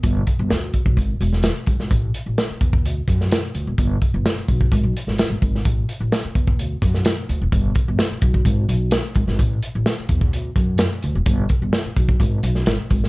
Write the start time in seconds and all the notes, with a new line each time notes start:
0.03 G1, kick, closed hi-hat
0.27 kick, closed hi-hat
0.39 G1
0.50 D2, snare, closed hi-hat
0.74 kick, closed hi-hat
0.86 B1, kick
0.97 G#1, kick, closed hi-hat
1.20 E1, closed hi-hat
1.33 snare
1.43 snare, closed hi-hat
1.66 G#1, kick, closed hi-hat
1.79 G#1, snare
1.91 A1, kick, closed hi-hat
2.14 closed hi-hat
2.26 A1
2.38 snare, closed hi-hat
2.50 muted upright bass stroke
2.61 E2, kick, closed hi-hat
2.73 kick
2.85 D2, closed hi-hat
3.08 F#2, kick, closed hi-hat
3.21 snare
3.31 snare, closed hi-hat
3.55 D2, closed hi-hat
3.67 E1
3.78 G1, kick, closed hi-hat
4.02 kick, closed hi-hat
4.14 G1
4.26 snare, closed hi-hat
4.37 muted upright bass stroke
4.48 B1, kick, closed hi-hat
4.61 kick
4.72 G#1, kick, closed hi-hat
4.84 B1
4.97 closed hi-hat
5.07 G#1, snare
5.18 snare, closed hi-hat
5.30 G#1
5.42 G#1, kick, closed hi-hat
5.56 snare
5.65 A1, kick, closed hi-hat
5.89 closed hi-hat
6.00 A1
6.12 snare, closed hi-hat
6.25 muted upright bass stroke
6.35 E2, kick, closed hi-hat
6.48 kick
6.59 D2, closed hi-hat
6.82 F#2, kick, closed hi-hat
6.94 snare
7.05 snare, closed hi-hat
7.29 D2, closed hi-hat
7.41 E1
7.52 G1, kick, closed hi-hat
7.75 kick, closed hi-hat
7.88 G1
7.99 snare, closed hi-hat
8.11 muted upright bass stroke
8.22 B1, kick, closed hi-hat
8.34 kick
8.45 G#1, kick, closed hi-hat
8.69 B1, closed hi-hat
8.91 snare, closed hi-hat
9.15 G#1, kick, closed hi-hat
9.28 G#1, snare
9.39 A1, kick, closed hi-hat
9.63 closed hi-hat
9.75 A1
9.86 snare, closed hi-hat
9.99 muted upright bass stroke
10.09 E2, kick, closed hi-hat
10.21 kick
10.33 D2, closed hi-hat
10.56 F#2, kick, closed hi-hat
10.78 snare, closed hi-hat
11.02 D2, closed hi-hat
11.15 E1
11.26 G1, kick, closed hi-hat
11.49 kick, closed hi-hat
11.62 G1
11.73 snare, closed hi-hat
11.84 muted upright bass stroke
11.96 B1, kick, closed hi-hat
12.09 kick
12.20 G#1, kick, closed hi-hat
12.43 B1, closed hi-hat
12.55 snare
12.66 G#1, snare, closed hi-hat
12.90 G#1, kick, closed hi-hat
13.04 snare